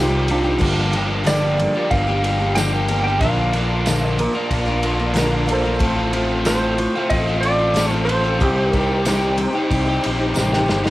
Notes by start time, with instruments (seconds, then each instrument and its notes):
Already playing: fingered electric bass C2, overdriven electric guitar C3 D#3 G3, tonewheel organ D#3 C4 G4 C5, steel-string acoustic guitar D#4
0.00 overdriven electric guitar C4 G4, upright piano F4
0.12 overdriven electric guitar G3 C4 G4
0.28 overdriven electric guitar D#3 G3 C4 G4, upright piano D4 F4, steel-string acoustic guitar D#4, ride
0.44 overdriven electric guitar G3 C4 G4, steel-string acoustic guitar D#4
0.59 fingered electric bass G1, overdriven electric guitar G2 D3 G3, steel-string acoustic guitar F3 A#3 G4, tonewheel organ D4 F4 G4 A#4, kick, crash
0.63 overdriven electric guitar A#3 D4 G4
0.77 overdriven electric guitar G3 A#3 D4 G4
0.92 steel-string acoustic guitar F3, overdriven electric guitar G3 A#3, ride
0.96 overdriven electric guitar D4 G4
1.25 overdriven electric guitar G2 D3 G3, steel-string acoustic guitar F3 A#3 D4 G4, electric slide guitar D5, snare, ride, tambourine
1.29 overdriven electric guitar A#3 D4 G4
1.57 steel-string acoustic guitar F3 A#3 D4 G4, muted overdriven electric guitar stroke, ride
1.76 steel-string acoustic guitar F3, overdriven electric guitar G3 A#3 D4 G4
1.91 fingered electric bass G1, electric slide guitar F5, kick, ride
2.08 steel-string acoustic guitar F3, overdriven electric guitar G3 A#3 D4 G4
2.23 overdriven electric guitar G3 A#3 D4 G4, ride
2.40 steel-string acoustic guitar F3 A#3 D4 G4
2.55 overdriven electric guitar G2 D3 G3 A#3 D4 G4, steel-string acoustic guitar F3, electric slide guitar G5, snare, ride, tambourine
2.73 overdriven electric guitar G3 A#3 D4 G4
2.88 steel-string acoustic guitar F3, overdriven electric guitar G3 A#3 D4 G4, ride
3.04 overdriven electric guitar A#3 D4 G4, electric slide guitar G5
3.09 steel-string acoustic guitar F3, overdriven electric guitar G3
3.18 fingered electric bass A#1, overdriven electric guitar A#2 D3 A#3, tonewheel organ A#3 D4 F4 D5, electric slide guitar F5, kick, ride
3.23 steel-string acoustic guitar F3 A#4, overdriven electric guitar D4 F4
3.37 overdriven electric guitar A#3 D4 F4
3.53 overdriven electric guitar D3 A#3 D4, steel-string acoustic guitar F3 A#4, ride
3.58 overdriven electric guitar F4
3.86 overdriven electric guitar A#2 D3 A#3 D4 F4, steel-string acoustic guitar F3 A#4, snare, ride, tambourine
4.07 electric slide guitar D#5
4.18 steel-string acoustic guitar F3 A#3 D4 A#4, upright piano A#4, muted overdriven electric guitar stroke, ride
4.33 steel-string acoustic guitar F3 A#4, overdriven electric guitar D4 F4
4.38 overdriven electric guitar A#3
4.51 fingered electric bass A#1, kick, ride
4.65 steel-string acoustic guitar F3 A#4, overdriven electric guitar D4 F4
4.70 overdriven electric guitar A#3
4.83 overdriven electric guitar D3 A#3 D4 F4, ride
4.97 steel-string acoustic guitar F3 A#3 D4 A#4
5.14 overdriven electric guitar A#2 D3 A#3 D4, steel-string acoustic guitar F3 A#4, upright piano A#4, snare, ride, tambourine
5.18 overdriven electric guitar F4
5.32 overdriven electric guitar A#3 D4 F4
5.46 overdriven electric guitar D3 A#3 D4, steel-string acoustic guitar F3 A#4, ride
5.50 overdriven electric guitar F4, upright piano A4 C5
5.63 steel-string acoustic guitar F3 A#4, overdriven electric guitar A#3 D4 F4
5.79 fingered electric bass A1, overdriven electric guitar A2 F3 A3 C4, tonewheel organ C4 F4 A4 C5, steel-string acoustic guitar A4, kick, ride
5.83 overdriven electric guitar F4
5.96 overdriven electric guitar A3 C4 F4
6.13 overdriven electric guitar F3 A3 C4 F4, steel-string acoustic guitar A4, ride
6.45 overdriven electric guitar A2 F3 A3 C4 F4, steel-string acoustic guitar A4, electric slide guitar C5, snare, ride, tambourine
6.78 steel-string acoustic guitar A3 C4 F4 A4, muted overdriven electric guitar stroke, ride
6.95 overdriven electric guitar A3 C4 F4, steel-string acoustic guitar A4
7.10 fingered electric bass A1, electric slide guitar D#5, kick, ride
7.27 overdriven electric guitar A3 C4 F4, steel-string acoustic guitar A4
7.41 overdriven electric guitar F3, electric slide guitar D5, ride
7.45 overdriven electric guitar A3 C4 F4
7.58 steel-string acoustic guitar C4 F4 A4
7.74 overdriven electric guitar A2 F3 A3 C4 F4, steel-string acoustic guitar A4, snare, ride, tambourine
7.91 overdriven electric guitar A3 C4 F4, electric slide guitar C5
8.05 overdriven electric guitar F3 A3, steel-string acoustic guitar F4 A4, electric slide guitar C5, ride
8.09 overdriven electric guitar C4 F4
8.24 overdriven electric guitar A3 C4 F4, steel-string acoustic guitar A4
8.37 fingered electric bass C2, overdriven electric guitar C3 D#3, tonewheel organ C4 D#4 G4, kick, ride
8.42 overdriven electric guitar G3 C4 G4, steel-string acoustic guitar D#4
8.57 overdriven electric guitar G3 C4 G4
8.72 overdriven electric guitar D#3 G3, steel-string acoustic guitar D#4, electric slide guitar A#4, kick, ride
8.76 overdriven electric guitar C4 G4
9.05 overdriven electric guitar C3 D#3 G3 C4, steel-string acoustic guitar D#4, snare, ride, tambourine
9.10 overdriven electric guitar G4
9.37 steel-string acoustic guitar G3 C4 D#4 G4, muted overdriven electric guitar stroke, ride
9.51 steel-string acoustic guitar D#4 G4
9.55 overdriven electric guitar G3 C4 G4
9.71 fingered electric bass C2, kick, ride
9.87 overdriven electric guitar C4 G4, steel-string acoustic guitar D#4
9.91 overdriven electric guitar G3
10.03 fingered electric bass A#1, overdriven electric guitar D#3 G3 C4 G4, ride
10.18 steel-string acoustic guitar C4 D#4 G4
10.35 fingered electric bass A1, overdriven electric guitar C3 D#3 G3 C4 G4, steel-string acoustic guitar D#4, snare, tambourine
10.51 overdriven electric guitar G3 C4 G4, snare
10.67 fingered electric bass G1, overdriven electric guitar D#3 G3 C4 G4, steel-string acoustic guitar D#4, snare
10.84 overdriven electric guitar G3 C4 G4, steel-string acoustic guitar D#4, snare